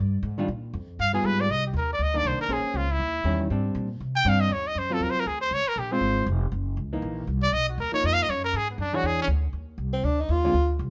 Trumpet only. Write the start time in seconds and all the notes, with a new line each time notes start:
1.01 F5
1.14 G#4
1.26 B4
1.41 D5
1.51 D#5
1.67 G4
1.77 A#4
1.93 D5
2.03 D#5
2.17 D5
2.27 C5
2.41 A#4
2.53 G#4
2.77 F4
2.92 E4
4.16 G5
4.29 F5
4.41 D#5
4.53 C#5
4.68 D#5
4.78 C5
4.93 A4
5.03 A#4
5.10 C5
5.20 A#4
5.27 G#4
5.41 C5
5.54 C#5
5.68 A#4
5.79 G4
5.92 C5
7.43 D5
7.53 D#5
7.69 F#4
7.80 A#4
7.94 C#5
8.06 D#5
8.13 F5
8.23 D#5
8.30 C#5
8.44 A#4
8.56 G#4
8.70 B3
8.80 D4
8.95 F#4
9.06 G#4
9.22 C#4